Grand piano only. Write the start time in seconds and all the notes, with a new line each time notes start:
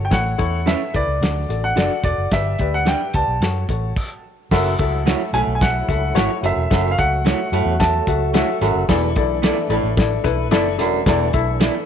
0.05 G5
0.12 F#5
0.67 E5
0.96 D5
1.64 F#5
2.04 D5
2.33 E5
2.74 F#5
2.88 G5
3.15 A5
5.34 G#5
5.55 G#5
5.62 F#5
6.46 E5
6.91 F5
6.99 F#5
7.80 A5